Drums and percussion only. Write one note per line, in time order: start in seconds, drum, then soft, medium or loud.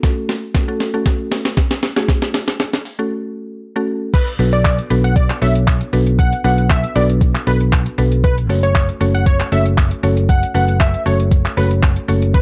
0.03 kick loud
0.03 snare medium
0.03 closed hi-hat medium
0.29 snare medium
0.29 open hi-hat medium
0.55 kick loud
0.55 snare medium
0.55 closed hi-hat medium
0.80 snare medium
0.80 open hi-hat medium
1.06 kick loud
1.06 snare medium
1.06 closed hi-hat medium
1.32 snare loud
1.32 open hi-hat medium
1.45 snare medium
1.57 kick loud
1.57 snare loud
1.57 closed hi-hat medium
1.71 snare loud
1.83 snare loud
1.83 open hi-hat medium
1.96 snare loud
2.08 kick loud
2.08 snare loud
2.08 closed hi-hat medium
2.22 snare loud
2.34 snare loud
2.34 open hi-hat medium
2.48 snare loud
2.60 snare loud
2.60 closed hi-hat medium
2.73 snare loud
2.85 open hi-hat medium
4.14 kick loud
4.14 closed hi-hat medium
4.14 crash loud
4.14 shaker medium
4.28 closed hi-hat medium
4.28 shaker medium
4.39 open hi-hat medium
4.39 shaker medium
4.53 closed hi-hat medium
4.53 shaker medium
4.65 kick loud
4.65 clap loud
4.65 closed hi-hat medium
4.65 shaker medium
4.79 closed hi-hat soft
4.79 shaker soft
4.90 open hi-hat medium
4.90 shaker medium
5.04 closed hi-hat medium
5.04 shaker medium
5.16 kick loud
5.16 closed hi-hat medium
5.16 shaker medium
5.30 clap medium
5.30 closed hi-hat medium
5.30 shaker soft
5.42 open hi-hat medium
5.42 shaker medium
5.55 closed hi-hat medium
5.55 shaker medium
5.67 kick loud
5.67 clap loud
5.67 closed hi-hat medium
5.67 shaker medium
5.81 closed hi-hat medium
5.81 shaker medium
5.93 open hi-hat medium
5.93 shaker medium
6.07 closed hi-hat medium
6.07 shaker medium
6.19 kick loud
6.19 closed hi-hat medium
6.19 shaker medium
6.33 closed hi-hat medium
6.33 shaker medium
6.45 open hi-hat medium
6.45 shaker medium
6.58 closed hi-hat soft
6.58 shaker medium
6.70 kick loud
6.70 clap loud
6.70 closed hi-hat medium
6.70 shaker medium
6.84 closed hi-hat soft
6.84 shaker soft
6.96 open hi-hat medium
6.96 shaker medium
7.10 closed hi-hat medium
7.10 shaker medium
7.21 kick loud
7.21 closed hi-hat medium
7.21 shaker medium
7.35 clap medium
7.35 closed hi-hat medium
7.35 shaker medium
7.47 open hi-hat medium
7.47 shaker medium
7.60 closed hi-hat medium
7.60 shaker medium
7.72 kick loud
7.72 clap loud
7.72 closed hi-hat medium
7.72 shaker medium
7.86 closed hi-hat medium
7.86 shaker medium
7.98 open hi-hat medium
7.98 shaker medium
8.12 closed hi-hat medium
8.12 shaker medium
8.24 kick loud
8.24 closed hi-hat medium
8.24 shaker medium
8.38 closed hi-hat medium
8.38 shaker medium
8.50 open hi-hat medium
8.50 shaker medium
8.63 closed hi-hat medium
8.63 shaker medium
8.75 kick loud
8.75 clap loud
8.75 closed hi-hat medium
8.75 shaker medium
8.89 closed hi-hat soft
8.89 shaker soft
9.01 open hi-hat medium
9.01 shaker medium
9.15 closed hi-hat medium
9.15 shaker medium
9.26 kick loud
9.26 closed hi-hat medium
9.26 shaker medium
9.40 clap medium
9.40 closed hi-hat medium
9.40 shaker medium
9.52 open hi-hat medium
9.52 shaker medium
9.66 closed hi-hat medium
9.66 shaker medium
9.78 kick loud
9.78 clap loud
9.78 closed hi-hat medium
9.78 shaker medium
9.91 closed hi-hat medium
9.91 shaker medium
10.03 open hi-hat medium
10.03 shaker medium
10.17 closed hi-hat medium
10.17 shaker medium
10.29 kick loud
10.29 closed hi-hat medium
10.29 shaker medium
10.43 closed hi-hat medium
10.43 shaker medium
10.55 open hi-hat medium
10.55 shaker medium
10.68 closed hi-hat medium
10.68 shaker medium
10.80 kick loud
10.80 clap loud
10.80 closed hi-hat medium
10.80 shaker medium
10.94 closed hi-hat soft
10.94 shaker soft
11.06 open hi-hat medium
11.06 shaker medium
11.20 closed hi-hat medium
11.20 shaker medium
11.31 kick loud
11.31 closed hi-hat medium
11.31 shaker medium
11.45 clap medium
11.45 closed hi-hat medium
11.45 shaker medium
11.57 open hi-hat medium
11.57 shaker medium
11.71 closed hi-hat medium
11.71 shaker medium
11.83 kick loud
11.83 clap loud
11.83 closed hi-hat medium
11.83 shaker medium
11.96 closed hi-hat medium
11.96 shaker medium
12.08 open hi-hat medium
12.08 shaker medium
12.22 closed hi-hat medium
12.22 shaker medium
12.34 kick loud
12.34 closed hi-hat medium
12.34 shaker medium